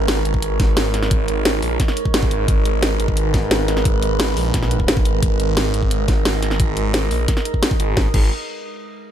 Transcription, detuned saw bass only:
0.00 0.24 G#1 loud
0.25 1.61 G#1 medium
1.63 1.78 A#1 medium
2.14 2.47 G#1 medium
2.48 2.98 G#1 medium
3.00 4.35 G#1 loud
4.37 4.53 A#1 medium
4.54 4.87 A#1 loud
4.88 5.21 G#1 loud
5.23 5.73 G#1 loud
5.74 7.10 G#1 loud
7.11 7.27 A#1 loud
7.80 7.95 G#1 loud
7.97 8.06 G#1 loud
8.14 8.30 G#1 loud

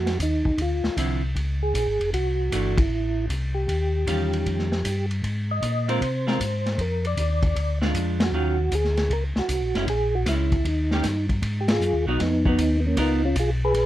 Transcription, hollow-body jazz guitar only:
0.97 1.20 D3 soft
0.97 1.21 F3 medium
0.97 1.21 C4 medium
0.97 1.21 E4 medium
2.52 2.75 E3 medium
2.52 2.76 A3 medium
2.52 2.76 D4 medium
4.07 4.66 D#3 medium
4.07 4.66 G3 medium
4.07 4.67 C#4 medium
4.07 4.67 F4 medium
5.88 6.00 G#3 medium
5.88 6.00 C4 medium
5.88 6.00 F4 medium
5.88 6.00 A#4 medium
6.27 6.38 G#3 medium
6.27 6.38 C4 medium
6.27 6.39 F4 medium
6.27 6.39 A#4 medium
7.81 8.30 G#3 medium
7.81 8.31 D4 medium
7.81 8.31 F4 medium
8.34 8.56 D#3 medium
8.34 8.57 F#3 medium
8.34 8.57 C#4 medium
8.34 8.57 F4 medium
9.75 9.87 G#3 medium
9.75 9.87 C#4 medium
9.75 9.87 E4 medium
10.28 10.50 G#3 soft
10.28 10.50 C#4 soft
10.28 10.51 E4 medium
10.92 11.03 D#3 medium
10.92 11.03 A#3 medium
10.92 11.03 C#4 medium
10.92 11.04 G4 medium
12.07 12.19 F#3 medium
12.07 12.19 B3 medium
12.07 12.19 D#4 medium
12.45 12.57 F#3 medium
12.45 12.57 B3 medium
12.45 12.58 D#4 medium
12.97 13.20 B3 medium
12.97 13.21 F4 medium
12.97 13.21 A#4 medium

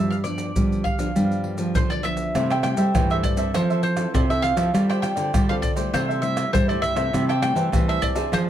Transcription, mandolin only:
0.00 0.10 E5 medium
0.10 0.15 F5 medium
0.24 0.81 D5 medium
0.84 1.71 F5 medium
1.75 1.77 C5 medium
1.75 1.90 C5 medium
1.90 1.92 D5 medium
1.90 2.04 D5 medium
2.03 2.05 E5 medium
2.03 2.47 E5 medium
2.51 2.62 G5 medium
2.64 3.11 G5 medium
3.11 3.16 E5 medium
3.23 3.54 D5 medium
3.55 3.82 C5 medium
3.83 4.14 C5 medium
4.14 4.19 D5 medium
4.30 4.45 E5 medium
4.42 4.89 F5 medium
4.90 5.01 G5 medium
5.02 5.49 G5 medium
5.49 5.54 F5 medium
5.62 5.70 D5 medium
5.94 6.24 C5 medium
6.22 6.50 E5 medium
6.53 6.67 C5 medium
6.69 6.83 D5 medium
6.82 7.24 E5 medium
7.29 7.41 G5 medium
7.43 7.84 G5 medium
7.89 8.04 E5 medium
8.02 8.33 D5 medium
8.34 8.41 C5 medium

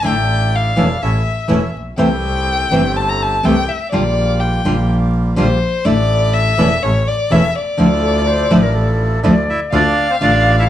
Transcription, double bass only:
0.05 0.74 A1 medium
0.77 0.98 E1 medium
1.01 1.22 A1 medium
1.50 1.71 E1 medium
1.74 1.97 A#1 medium
1.98 2.68 C2 medium
2.72 3.41 G1 medium
3.45 3.65 C2 medium
3.93 4.62 A#1 medium
4.65 5.34 A#1 medium
5.38 5.58 A#1 medium
5.86 6.54 A1 medium
6.59 6.79 E1 medium
6.83 7.03 A1 medium
7.31 7.51 E1 medium
7.79 8.47 D2 medium
8.51 9.20 A1 medium
9.24 9.44 D2 medium
9.73 9.93 D2 medium
10.21 10.69 A1 medium

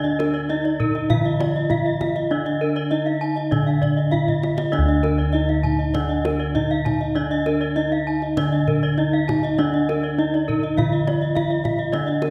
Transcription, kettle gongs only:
0.00 0.45 D3 medium
0.00 1.67 D4 medium
0.49 0.57 D#4 soft
1.10 2.88 D3 soft
1.70 1.78 D#4 soft
2.31 4.09 D4 soft
2.91 2.99 D#4 soft
3.52 5.30 D3 soft
4.12 4.20 D#4 soft
4.73 6.51 D4 medium
4.78 8.36 D2 medium
5.34 5.42 D#4 soft
6.56 6.64 D#4 soft
7.16 8.94 D4 medium
7.77 7.85 D#4 soft
8.38 10.15 D3 medium
8.98 9.06 D#4 soft
9.59 11.33 D4 medium
10.19 10.27 D#4 soft
10.77 12.30 D3 medium
11.36 11.44 D#4 soft
11.93 12.30 D4 medium

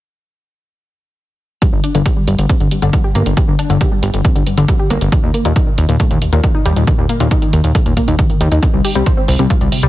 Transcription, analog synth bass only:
1.73 1.81 G1 medium
1.95 2.03 G1 medium
2.28 2.36 G1 medium
2.38 2.46 G1 medium
2.60 2.68 G1 medium
2.82 2.90 G1 medium
3.15 3.23 G1 medium
3.26 3.34 G1 medium
3.48 3.56 G1 medium
3.70 3.78 G1 medium
4.03 4.11 G1 medium
4.14 4.22 G1 medium
4.36 4.44 G1 medium
4.57 4.65 G1 medium
4.90 4.98 G1 medium
5.01 5.09 G1 medium
5.23 5.31 D#2 medium
5.45 5.53 D#2 medium
5.78 5.86 D#2 medium
5.89 5.97 D#2 medium
6.11 6.19 D#2 medium
6.33 6.41 D#2 medium
6.66 6.73 D#2 loud
6.76 6.84 D#2 medium
6.98 7.06 D#2 medium
7.20 7.28 D#2 medium
7.53 7.61 D#2 medium
7.64 7.72 D#2 medium
7.86 7.94 D#2 medium
8.08 8.16 D#2 medium
8.41 8.49 D#2 medium
8.52 8.60 D#2 medium
8.74 8.81 C2 medium
8.95 9.03 C2 medium
9.28 9.36 C2 medium
9.39 9.47 C2 medium
9.61 9.69 C2 medium
9.83 9.89 C2 medium

